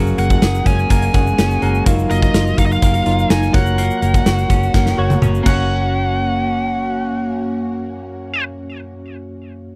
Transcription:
0.00 0.11 F#1 loud
0.00 1.86 F#3 medium
0.00 1.84 G#3 medium
0.00 1.82 A#3 medium
0.00 0.79 C#4 medium
0.00 0.79 F#4 medium
0.00 1.84 F#4 medium
0.00 0.80 G#4 medium
0.00 0.80 A#4 medium
0.00 0.80 F#5 loud
0.07 shaker medium
0.18 0.35 F#1 loud
0.18 0.90 A#3 medium
0.18 0.67 F#5 loud
0.18 closed hi-hat medium
0.18 shaker soft
0.30 kick loud
0.30 shaker medium
0.42 0.59 F#1 loud
0.42 1.13 G#4 medium
0.42 snare loud
0.42 closed hi-hat medium
0.42 tambourine medium
0.42 shaker medium
0.55 shaker medium
0.66 0.83 F#1 loud
0.66 1.37 C#4 medium
0.66 0.89 G#5 loud
0.66 kick medium
0.66 closed hi-hat medium
0.66 shaker medium
0.79 shaker soft
0.90 1.08 F#1 loud
0.90 1.62 A#3 medium
0.90 1.83 G#5 loud
0.90 kick loud
0.90 closed hi-hat loud
0.90 shaker medium
1.02 closed hi-hat medium
1.02 shaker soft
1.14 1.32 F#1 loud
1.14 1.57 C#4 medium
1.14 1.57 F#4 medium
1.14 1.91 G#4 medium
1.14 1.57 G#4 medium
1.14 1.57 A#4 medium
1.14 1.57 F#5 medium
1.14 kick medium
1.14 closed hi-hat medium
1.27 shaker soft
1.38 1.55 F#1 loud
1.38 1.91 C#4 medium
1.38 snare loud
1.38 closed hi-hat loud
1.38 tambourine medium
1.38 shaker medium
1.51 shaker medium
1.62 1.80 F#1 loud
1.62 2.10 A#3 medium
1.62 1.83 C#4 medium
1.62 1.84 F#4 medium
1.62 1.84 G#4 medium
1.62 1.84 A#4 medium
1.62 1.84 F#5 loud
1.62 closed hi-hat medium
1.75 shaker medium
1.86 2.04 F#1 loud
1.86 3.52 F#3 medium
1.86 5.36 F#3 medium
1.86 2.72 F#3 medium
1.86 2.72 D#4 loud
1.86 3.52 D#4 medium
1.86 2.72 F4 medium
1.86 3.53 F4 medium
1.86 2.72 A#4 medium
1.86 2.72 F5 loud
1.86 kick loud
1.86 closed hi-hat loud
1.86 shaker medium
1.99 shaker medium
2.10 2.28 F#1 loud
2.10 2.82 A#3 medium
2.10 2.58 D#5 loud
2.10 closed hi-hat medium
2.10 shaker soft
2.22 kick loud
2.22 shaker medium
2.34 2.51 F#1 loud
2.34 3.05 F4 medium
2.34 snare loud
2.34 closed hi-hat medium
2.34 tambourine medium
2.34 shaker medium
2.47 shaker medium
2.58 2.75 F#1 loud
2.58 3.29 D#4 medium
2.58 2.66 F5 loud
2.58 kick medium
2.58 closed hi-hat medium
2.58 shaker medium
2.66 2.72 D#5 medium
2.71 3.32 F5 loud
2.71 shaker soft
2.82 3.00 F#1 loud
2.82 3.54 A#3 medium
2.82 kick medium
2.82 closed hi-hat loud
2.82 shaker medium
2.94 closed hi-hat medium
2.94 shaker soft
3.06 3.23 F#1 loud
3.06 3.49 F#3 medium
3.06 3.49 D#4 medium
3.06 3.49 F4 medium
3.06 3.59 F4 medium
3.06 3.49 A#4 medium
3.06 3.49 F5 medium
3.06 closed hi-hat medium
3.19 shaker soft
3.30 3.47 F#1 loud
3.30 3.59 D#4 medium
3.30 3.53 G#5 loud
3.30 snare loud
3.30 closed hi-hat medium
3.30 tambourine medium
3.30 shaker medium
3.43 shaker soft
3.53 3.89 F#1 loud
3.53 3.78 A#3 medium
3.53 5.45 A#3 medium
3.53 5.45 C#4 medium
3.53 4.39 F#4 medium
3.53 5.45 F#4 medium
3.53 4.40 A#4 medium
3.53 4.40 C#5 medium
3.53 5.18 F#5 loud
3.53 kick loud
3.53 closed hi-hat medium
3.66 shaker medium
3.78 4.02 A#3 medium
3.78 closed hi-hat loud
3.78 shaker medium
3.91 shaker medium
4.02 4.19 F#1 loud
4.02 4.74 A#3 medium
4.02 closed hi-hat medium
4.02 shaker soft
4.14 kick medium
4.14 shaker medium
4.26 4.44 F#1 loud
4.26 4.98 F#4 medium
4.26 snare loud
4.26 closed hi-hat medium
4.26 tambourine medium
4.26 shaker medium
4.38 shaker medium
4.50 4.67 F#1 loud
4.50 5.22 C#4 medium
4.50 kick medium
4.50 closed hi-hat medium
4.50 shaker medium
4.63 shaker soft
4.74 4.92 F#1 loud
4.74 5.43 A#3 medium
4.74 kick loud
4.74 snare medium
4.74 shaker medium
4.86 snare medium
4.86 shaker soft
4.97 5.16 F#1 loud
4.97 5.40 F#4 medium
4.97 5.53 F#4 medium
4.97 5.41 A#4 medium
4.97 5.41 C#5 loud
5.10 high tom medium
5.10 shaker soft
5.22 5.39 F#1 loud
5.22 5.48 C#4 medium
5.22 mid tom loud
5.22 shaker medium
5.35 shaker soft
5.43 8.43 F#1 loud
5.43 8.43 F#2 medium
5.43 8.93 A#3 medium
5.43 8.41 A#3 medium
5.43 8.43 A#3 medium
5.43 8.42 C#4 medium
5.43 8.43 C#4 medium
5.43 8.43 F#4 medium
5.43 8.44 F#4 medium
5.43 8.43 F#5 medium
5.43 kick loud
5.43 crash medium
5.43 shaker medium
5.48 8.99 C#4 medium
5.48 8.45 C#5 medium
5.54 9.04 F#4 loud

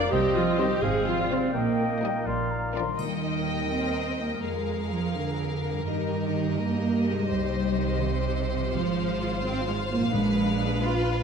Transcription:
0.00 0.14 A#2 medium
0.00 0.14 F3 soft
0.00 0.11 A#3 medium
0.00 0.14 A#3 soft
0.00 0.14 D4 soft
0.00 0.14 F4 soft
0.00 0.14 A#4 medium
0.00 0.12 D5 medium
0.00 0.14 D5 medium
0.11 0.68 C2 medium
0.11 0.85 C3 medium
0.11 0.20 G3 medium
0.11 0.79 C4 soft
0.11 0.35 G4 medium
0.11 0.78 C5 medium
0.11 0.78 D#5 soft
0.11 0.85 D#5 medium
0.35 0.58 F3 medium
0.35 0.58 C4 soft
0.35 0.59 F4 medium
0.58 0.67 D#3 soft
0.58 0.82 G3 medium
0.58 0.67 C4 soft
0.58 0.85 D#4 soft
0.58 0.82 G4 medium
0.58 0.77 C5 soft
0.58 0.77 D#5 soft
0.82 1.39 G#1 medium
0.82 1.56 G#2 soft
0.82 1.06 G#3 medium
0.82 1.57 C4 soft
0.82 1.06 G#4 medium
0.82 1.18 C5 soft
0.82 1.52 F5 soft
0.82 1.54 F5 medium
1.06 1.30 F3 medium
1.06 1.57 F3 soft
1.06 1.30 F4 medium
1.20 1.58 D5 soft
1.30 1.54 C3 soft
1.30 1.39 F3 soft
1.30 1.54 C4 medium
1.30 1.39 C4 soft
1.30 1.57 C4 soft
1.30 1.57 F4 soft
1.30 1.49 C5 soft
1.30 1.48 F5 soft
1.53 2.12 A#1 medium
1.53 2.26 A#2 soft
1.53 2.27 A#2 soft
1.53 2.25 A#3 medium
1.53 2.27 A#3 soft
1.53 2.28 D#5 soft
1.53 2.27 G5 soft
1.53 2.20 G5 soft
1.79 2.01 A#3 soft
2.02 2.11 G3 soft
2.02 2.50 A#3 soft
2.02 2.11 D#4 soft
2.02 2.29 D#4 soft
2.02 2.20 A#4 soft
2.02 2.20 D#5 soft
2.02 2.21 G5 soft
2.26 2.84 A#1 medium
2.26 3.01 A#2 soft
2.26 2.74 A#3 soft
2.26 2.75 D5 soft
2.26 2.74 F5 soft
2.26 2.52 C6 medium
2.51 2.74 A#3 soft
2.51 2.74 A#5 soft
2.74 2.83 F3 soft
2.74 2.89 A#3 soft
2.74 2.83 D4 soft
2.74 3.01 D4 soft
2.74 2.93 A#4 soft
2.74 2.93 D5 soft
2.74 2.93 F5 soft
2.74 2.98 C6 soft
2.81 4.37 D#3 soft
2.86 4.39 G3 soft
2.90 4.33 A#3 soft
2.95 4.39 D#2 soft
2.95 4.43 G4 soft
2.95 4.39 D#5 soft
2.99 3.67 D#3 soft
2.99 4.40 A#4 soft
2.99 4.40 G5 soft
2.99 triangle soft
3.71 4.19 C4 medium
4.19 4.43 A#3 soft
4.25 5.79 F2 soft
4.30 5.81 G#3 soft
4.34 7.27 A#3 soft
4.39 5.81 A#4 soft
4.43 5.83 F2 soft
4.43 4.90 G#3 soft
4.43 5.82 G#4 soft
4.43 7.25 A#4 soft
4.43 5.82 F5 soft
4.91 5.15 F3 soft
5.15 5.86 D3 soft
5.68 7.22 G2 soft
5.73 7.15 G3 soft
5.78 7.19 D#4 soft
5.82 7.26 G2 soft
5.82 8.69 G4 soft
5.82 7.29 A#4 soft
5.87 6.57 D#3 medium
5.87 8.69 D#5 soft
6.58 7.06 A#3 medium
7.06 7.30 G#3 medium
7.11 8.66 C3 soft
7.16 8.68 G3 soft
7.21 8.70 D#4 soft
7.25 8.67 C5 soft
7.29 8.73 C2 soft
7.29 7.76 G3 medium
7.29 10.10 C5 soft
7.77 8.00 D#3 medium
8.01 8.73 C3 medium
8.55 10.07 G#2 soft
8.59 9.99 F3 soft
8.64 11.23 F4 soft
8.68 10.14 G#1 soft
8.68 10.14 C5 soft
8.73 9.44 F3 medium
8.73 10.10 F4 soft
8.73 11.23 F5 soft
9.44 9.67 C4 medium
9.67 9.75 G#3 medium
9.91 10.14 A#3 medium
9.96 11.23 A#2 soft
10.00 11.23 F3 soft
10.05 11.23 D4 soft
10.09 11.23 B4 soft
10.13 11.23 A#1 soft
10.13 10.80 A#2 soft
10.13 10.84 G#3 medium
10.13 11.23 D4 soft
10.84 11.23 F4 medium

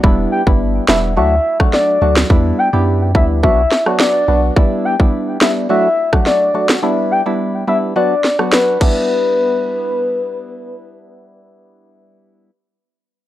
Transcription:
0.03 0.26 E1 loud
0.03 0.43 G3 medium
0.03 0.43 B3 medium
0.03 0.43 D4 medium
0.03 0.43 E4 loud
0.03 kick loud
0.32 0.42 G5 medium
0.47 0.80 G1 medium
0.47 0.85 G3 medium
0.47 0.85 B3 medium
0.47 0.85 D4 medium
0.47 0.85 E4 medium
0.47 kick medium
0.88 1.18 E1 medium
0.88 1.15 G3 medium
0.88 1.15 B3 medium
0.88 1.15 D4 medium
0.88 1.15 E4 medium
0.88 0.98 E5 medium
0.88 snare loud
1.17 1.39 D2 loud
1.17 1.35 F#3 medium
1.17 1.35 A3 medium
1.17 1.36 D4 medium
1.17 1.36 F#4 loud
1.17 1.58 E5 medium
1.60 1.98 F#3 medium
1.60 1.99 A3 medium
1.60 1.99 D4 medium
1.60 1.99 F#4 medium
1.60 kick medium
1.60 cross-stick medium
1.73 2.14 D5 medium
1.73 snare medium
2.01 2.24 D2 medium
2.01 2.28 F#3 medium
2.01 2.28 A3 medium
2.01 2.28 D4 medium
2.01 2.28 F#4 medium
2.17 snare loud
2.30 2.53 E2 loud
2.30 2.70 G3 loud
2.30 2.70 B3 medium
2.30 2.70 D4 medium
2.30 2.70 E4 loud
2.30 kick loud
2.58 2.68 G5 medium
2.73 3.16 F#2 medium
2.73 3.12 B3 medium
2.73 3.12 D4 medium
2.73 3.12 E4 medium
2.73 3.12 G4 medium
3.15 3.45 D2 medium
3.15 3.41 G3 medium
3.15 3.41 B3 medium
3.15 3.41 D4 medium
3.15 3.41 E4 medium
3.15 3.25 E5 medium
3.15 kick medium
3.43 3.66 B1 loud
3.43 3.62 F#3 medium
3.43 3.62 B3 medium
3.43 3.62 D4 medium
3.43 3.62 F#4 loud
3.43 3.84 E5 medium
3.43 kick medium
3.72 snare medium
3.86 4.25 F#3 medium
3.86 4.25 B3 medium
3.86 4.25 D4 medium
3.86 4.25 F#4 medium
3.86 cross-stick medium
4.00 4.41 D5 medium
4.00 snare loud
4.28 4.51 B1 medium
4.28 4.54 F#3 medium
4.28 4.54 B3 medium
4.28 4.54 D4 medium
4.28 4.54 F#4 medium
4.56 4.96 G3 medium
4.56 4.96 B3 medium
4.56 4.96 D4 medium
4.56 4.96 E4 loud
4.56 kick loud
4.85 4.94 G5 medium
4.99 5.38 G3 medium
4.99 5.38 B3 medium
4.99 5.38 D4 medium
4.99 5.38 E4 medium
4.99 kick medium
5.41 5.67 G3 medium
5.41 5.67 B3 medium
5.41 5.68 D4 medium
5.41 5.68 E4 medium
5.41 5.51 E5 medium
5.41 snare loud
5.69 5.88 F#3 medium
5.69 5.88 A3 medium
5.69 5.88 D4 medium
5.69 5.88 F#4 loud
5.69 6.10 E5 medium
6.13 6.51 F#3 medium
6.13 6.51 A3 medium
6.13 6.51 D4 medium
6.13 6.52 F#4 medium
6.13 kick medium
6.13 cross-stick medium
6.26 6.67 D5 medium
6.26 snare medium
6.54 6.81 F#3 medium
6.54 6.81 A3 medium
6.54 6.81 D4 medium
6.54 6.81 F#4 medium
6.69 snare loud
6.83 7.22 G3 medium
6.83 7.23 B3 medium
6.83 7.23 D4 medium
6.83 7.23 E4 loud
7.11 7.21 G5 medium
7.26 7.64 G3 medium
7.26 7.65 B3 medium
7.26 7.65 D4 medium
7.26 7.65 E4 medium
7.67 7.94 G3 medium
7.67 7.94 B3 medium
7.67 7.94 D4 medium
7.67 7.94 E4 medium
7.67 7.77 E5 medium
7.96 8.15 F#3 medium
7.96 8.15 B3 medium
7.96 8.15 D4 medium
7.96 8.15 F#4 loud
7.96 8.37 D5 medium
8.24 snare medium
8.39 8.78 F#3 medium
8.39 8.78 B3 medium
8.39 8.78 D4 medium
8.39 8.78 F#4 medium
8.39 cross-stick medium
8.53 8.79 B4 medium
8.53 snare loud
8.80 12.50 G3 medium
8.80 12.50 B3 medium
8.80 12.51 D4 medium
8.80 12.51 E4 medium
8.80 10.75 B4 medium
8.80 kick loud
8.80 crash medium

